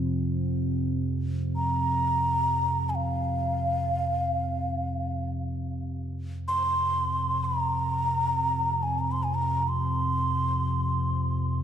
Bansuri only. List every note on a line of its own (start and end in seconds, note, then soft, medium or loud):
1.56 2.91 A#5 medium
2.89 2.97 G#5 medium
2.95 5.30 F5 medium
6.48 7.46 C6 medium
7.44 8.84 A#5 medium
8.83 9.01 G#5 medium
8.99 9.13 A#5 medium
9.12 9.25 C6 medium
9.23 9.36 G#5 medium
9.35 9.70 A#5 medium
9.68 11.63 C6 medium